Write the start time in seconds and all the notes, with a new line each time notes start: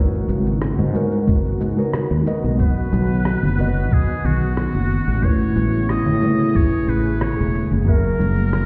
Already playing: G#1 C#3 G#3 B3 D#4 F#4 A#4 B4 C#5
0.13 shaker
0.28 G#1, high conga, shaker
0.46 shaker
0.62 cross-stick, shaker
0.78 G#2, low conga, shaker
0.92 G#3 D#4 F#4 A#4 B4, high conga, low conga, shaker
0.97 C#5
1.12 shaker
1.27 G#1, kick, shaker
1.45 shaker
1.60 G#2, shaker
1.77 G#3 D#4 F#4 A#4 B4 C#5, shaker
1.93 cross-stick, shaker
2.11 D#2, shaker
2.25 G#3 D#4 F#4 A#4 B4 D#5, shaker
2.44 B1, shaker
2.57 D#3 B3 F#4 B4 C#5, kick, shaker
2.61 B4 D#5
2.77 shaker
2.93 B1, high conga, shaker
3.10 shaker
3.25 cross-stick, shaker
3.43 F#1, low conga, shaker
3.56 B3 F#4 B4 C#5, high conga, low conga, shaker
3.60 D#5
3.76 shaker
3.91 B1 G#4, kick, shaker
4.09 shaker
4.24 B1 F#4, low conga, shaker
4.42 shaker
4.57 cross-stick, shaker
4.75 F#1, shaker
4.90 shaker
5.08 A1, shaker
5.20 C#3 A3 E4 G#4 B4 C#5, kick, shaker
5.25 C#5
5.41 shaker
5.56 A1, high conga, shaker
5.74 shaker
5.89 D#5, cross-stick, shaker
6.06 A2, low conga, shaker
6.20 A3 E4 G#4 B4, high conga, low conga, shaker
6.24 C#5
6.40 shaker
6.55 A1 C#5, kick, shaker
6.73 shaker
6.88 A1 B4, shaker
7.06 shaker
7.21 C#5, cross-stick, shaker
7.38 E1, shaker
7.54 shaker
7.71 F#1, shaker
7.84 C#3 F#3 E4 F#4 G#4 A#4, kick, shaker
7.89 A#4 E5
8.05 shaker
8.19 F#1, high conga, shaker
8.38 shaker
8.53 cross-stick, shaker